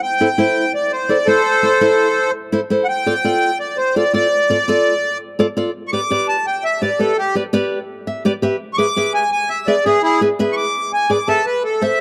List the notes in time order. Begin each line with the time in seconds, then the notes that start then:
0.03 G5
0.21 E4 A4 C5
0.38 E4 A4 C5
0.75 D5
0.92 C5
1.09 E4 A4 C5 D5
1.26 E4 A4 C5
1.63 E4 A4 C5
1.81 E4 A4 C5
2.52 E4 A4 C5
2.70 E4 A4 C5
2.84 F#5
2.89 G5
3.06 F4 A4 D5
3.24 F4 A4 D5
3.60 D5
3.77 C5
3.96 F4 A4 D5
4.13 F4 A4 D5
4.50 F4 A4 D5
4.68 F4 A4 D5
5.39 F4 A4 D5
5.57 F4 A4 D5
5.88 C#6
5.93 G4 B4 D5 D6
6.10 G4 B4 D5
6.29 A5
6.47 G5
6.64 E5
6.82 G4 B4 D5
6.99 G4 A4 B4 D5
7.18 G4
7.35 G4 B4 D5
7.53 G4 B4 D5
8.07 E5
8.25 G4 B4 D5
8.42 G4 B4 E5
8.74 C#6
8.78 G#4 B4 E5 D6
8.96 G#4 B4 E5
9.14 G#5
9.32 G#5
9.49 E5
9.67 G#4 B4 D5 E5
9.85 G#4 B4 E5
10.03 E4 G#4
10.21 G#4 B4 E5
10.39 G#4 B4 E5
10.52 C#6
10.57 D6
10.93 G#5
11.10 G#4 B4 D5 D6
11.28 G#4 A4 B4 E5 A5
11.46 B4
11.64 A4
11.81 A4 C5 E5